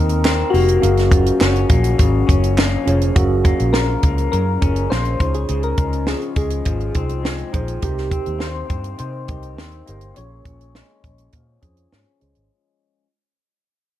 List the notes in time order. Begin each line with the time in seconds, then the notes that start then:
Already playing: D#2 C3 D#3 A#3 C4 D#4 G4 A#4
0.09 closed hi-hat
0.24 C4, snare, clap
0.50 F1 A#3 C4 D#4 F#4
0.54 G4 A#4, open hi-hat
0.68 closed hi-hat
0.82 F#1 F#2 C#4 G#4 A#4 F5, closed hi-hat
0.97 snare, closed hi-hat
1.11 F3, kick, closed hi-hat
1.26 closed hi-hat
1.40 F#1 C#4, snare, clap
1.56 closed hi-hat
1.69 A#1 A#3, kick, closed hi-hat
1.84 closed hi-hat
1.98 G#1 C#3, kick, closed hi-hat
2.27 F#1 C#4, kick, closed hi-hat
2.44 closed hi-hat
2.57 A#3, snare, clap
2.86 F1 F3 C#4 F4 G#4 C#5, closed hi-hat
3.01 closed hi-hat
3.15 F#1 F#2 C#4 F#4 G#4 A#4 F5, kick, closed hi-hat
3.44 A#3, kick, closed hi-hat
3.60 A#1, closed hi-hat
3.73 F3 A#4, snare
4.03 C#2 A#3, kick, closed hi-hat
4.18 closed hi-hat
4.32 F#2 C#3 A#4, closed hi-hat
4.61 F#1 C#4 F4 G#4 A#4, kick, closed hi-hat
4.76 closed hi-hat
4.90 A#1 A#3 C5, snare
5.05 closed hi-hat
5.20 C#2 C#3 D#4 F4 G#4 C5, kick, closed hi-hat
5.34 G#4, closed hi-hat
5.49 C#2 C#3, closed hi-hat
5.63 A#4, closed hi-hat
5.77 C#2 G#3, kick, closed hi-hat
5.93 closed hi-hat
6.06 F3 G#4, snare
6.22 closed hi-hat
6.36 C#2 G#3 G#4, kick, closed hi-hat
6.50 closed hi-hat
6.65 G#1 F3, kick, closed hi-hat
6.80 closed hi-hat
6.94 C2 C4 D#4 F4 G#4 C5, kick, closed hi-hat
7.09 closed hi-hat
7.23 G#3, snare
7.38 closed hi-hat
7.53 A#1 F3 D#4 F4 G#4 C5, kick, closed hi-hat
7.68 closed hi-hat
7.82 C2 C3 D#4 G4 A#4 C5, kick, closed hi-hat
7.98 snare
8.11 C4, kick, closed hi-hat
8.26 D#2, closed hi-hat
8.38 A#3 C5, snare
8.69 G2 C4, kick, closed hi-hat
8.84 closed hi-hat
8.98 C3 D#3 C5, closed hi-hat
9.28 C2 D#4 G4 A#4 D#5, kick, closed hi-hat
9.43 closed hi-hat
9.57 D#2 C4, snare
9.71 closed hi-hat
9.86 G1 A#3 D#4 G4 A#4 C5, closed hi-hat
10.01 closed hi-hat
10.14 A#1 A#2 C#4 F4 G#4 C#5, closed hi-hat
10.19 C#5
10.45 A#1 C#4, kick, closed hi-hat
10.61 closed hi-hat
10.74 G#3, snare
11.04 A#1 C#4, kick, closed hi-hat
11.18 closed hi-hat
11.32 A#2 F3, kick, closed hi-hat
11.62 F2 C#4 F4 G#4 C5, kick, closed hi-hat
11.77 closed hi-hat
11.91 G#2 C#4, snare
12.20 C#2 G#3 C#4 F4 G#4 C5, closed hi-hat
12.35 G#1, closed hi-hat